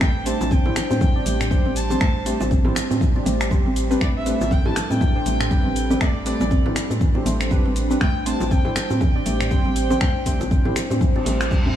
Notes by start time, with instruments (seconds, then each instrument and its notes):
Already playing: analog synth pad G3
0.01 fm bass A1, synth pluck A3, analog synth pad D4 C5, analog synth lead G5, finger snap, kick, cabasa
0.26 synth pluck A3, synth keys C4 D4 G4 C5, analog synth lead A5, open hi-hat, cabasa
0.41 fm bass A1, high bongo, cabasa
0.51 synth pluck C4, analog synth lead G5, kick, cabasa
0.66 synth keys C4 D4 G4 C5, synth pluck E4, mid tom, low bongo
0.76 finger snap, open hi-hat, low bongo, cabasa
0.90 fm bass A2, synth pluck C4, high bongo, cabasa
1.01 synth pluck E3, analog synth lead G5, kick, low bongo, cabasa
1.16 synth keys C4 D4 G4 D5
1.26 fm bass A1, synth pluck A3, open hi-hat, cabasa
1.41 finger snap, mid tom, cabasa
1.51 synth pluck G3, synth keys C4 D4 G4 C5, kick, cabasa
1.66 fm bass A1, synth pluck C4
1.76 analog synth lead A5, open hi-hat, cabasa
1.90 synth keys C4 D4 G4 C5, synth pluck C4, low bongo, cabasa
2.01 fm bass A1, synth pluck A3, analog synth pad C4, finger snap, kick, cabasa
2.26 synth pluck A3, synth keys C4 D4 G4 C5, open hi-hat, cabasa
2.40 fm bass A1, high bongo, low bongo, cabasa
2.51 synth pluck C4, kick, cabasa
2.65 synth keys C4 D4 G4 C5, synth pluck E4, mid tom, low bongo
2.75 finger snap, open hi-hat, low bongo, cabasa
2.91 fm bass A2, synth pluck C4, high bongo, cabasa
3.01 synth pluck E3, kick, cabasa
3.15 synth keys C4 D4 G4 D5, high bongo
3.26 fm bass A1, synth pluck A3, open hi-hat, low bongo, cabasa
3.41 finger snap, cabasa
3.51 synth pluck G3, synth keys C4 D4 G4 C5, kick, cabasa
3.65 fm bass A1, synth pluck C4
3.76 open hi-hat, cabasa
3.91 synth keys C4 D4 G4 B4, synth pluck C4, cabasa
4.01 fm bass A1, synth pluck A3, analog synth pad D4 A4, analog synth lead D5, finger snap, kick, cabasa
4.16 analog synth lead E5
4.26 synth pluck A3, synth keys C4 D4 G4 B4, open hi-hat, cabasa
4.41 fm bass A1, analog synth lead E5, high bongo, cabasa
4.51 synth pluck C4, analog synth lead G5, kick, cabasa
4.65 synth keys C4 D4 G4 B4, synth pluck E4, analog synth lead A5, mid tom, low bongo
4.76 finger snap, open hi-hat, low bongo, cabasa
4.90 fm bass A2, synth pluck C4, analog synth lead G5, high bongo, cabasa
5.01 synth pluck E3, kick, low bongo, cabasa
5.16 synth keys C4 D4 G4 C5
5.26 fm bass A1, synth pluck A3, open hi-hat, cabasa
5.41 finger snap, mid tom, cabasa
5.51 synth pluck G3, synth keys C4 D4 G4 B4, kick, cabasa
5.65 fm bass A1, synth pluck C4
5.76 open hi-hat, cabasa
5.90 synth pluck C4, synth keys C4 D4 G4 B4, low bongo, cabasa
6.01 fm bass A1, synth pluck A3, analog synth lead D5, finger snap, kick, cabasa
6.26 synth pluck A3, synth keys C4 D4 G4 B4, analog synth lead D5, open hi-hat, cabasa
6.40 fm bass A1, high bongo, low bongo, cabasa
6.51 synth pluck C4, kick, cabasa
6.66 synth keys C4 D4 G4 B4, synth pluck E4, mid tom, low bongo
6.75 finger snap, open hi-hat, low bongo, cabasa
6.90 fm bass A2, synth pluck C4, high bongo, cabasa
7.01 synth pluck E3, kick, cabasa
7.15 synth keys C4 D4 G4 C5, high bongo
7.25 fm bass A1, synth pluck A3, open hi-hat, low bongo, cabasa
7.41 finger snap, cabasa
7.51 synth pluck G3, synth keys C4 D4 G4 B4, kick, cabasa
7.65 fm bass A1, synth pluck C4
7.76 open hi-hat, cabasa
7.91 synth pluck C4, synth keys C4 D4 G4 B4, cabasa
8.01 fm bass A1, analog synth pad G3 D4 C5, synth pluck A3, analog synth lead G5, finger snap, kick, cabasa
8.26 synth pluck A3, synth keys C4 D4 G4 C5, analog synth lead A5, open hi-hat, cabasa
8.40 fm bass A1, high bongo, cabasa
8.51 synth pluck C4, analog synth lead G5, kick, cabasa
8.65 synth keys C4 D4 G4 C5, synth pluck E4, mid tom, low bongo
8.76 analog synth lead G5, finger snap, open hi-hat, low bongo, cabasa
8.90 fm bass A2, synth pluck C4, high bongo, cabasa
9.01 synth pluck E3, kick, low bongo, cabasa
9.16 synth keys C4 D4 G4 D5
9.26 fm bass A1, synth pluck A3, open hi-hat, cabasa
9.41 finger snap, mid tom, cabasa
9.51 synth pluck G3, synth keys C4 D4 G4 C5, kick, cabasa
9.65 fm bass A1, synth pluck C4
9.76 open hi-hat, cabasa
9.90 synth pluck C4, synth keys C4 D4 G4 C5, low bongo, cabasa
10.01 fm bass A1, synth pluck A3, finger snap, kick, cabasa
10.26 synth pluck A3, synth keys C4 D4 G4 C5, kick, open hi-hat, cabasa
10.40 fm bass A1, high bongo, low bongo, cabasa
10.51 synth pluck C4, kick, cabasa
10.65 synth keys C4 D4 G4 C5, synth pluck E4, mid tom, low bongo
10.76 finger snap, open hi-hat, low bongo, cabasa
10.90 fm bass A2, synth pluck C4, high bongo, cabasa
11.01 synth pluck E3, kick, reverse cymbal, cabasa
11.16 synth keys C4 D4 G4 D5, high bongo
11.26 fm bass A1, synth pluck A3, open hi-hat, low bongo, cabasa
11.41 finger snap, cabasa
11.51 synth pluck G3, synth keys C4 D4 G4 C5, kick, cabasa
11.65 fm bass E2, synth pluck C4, mid tom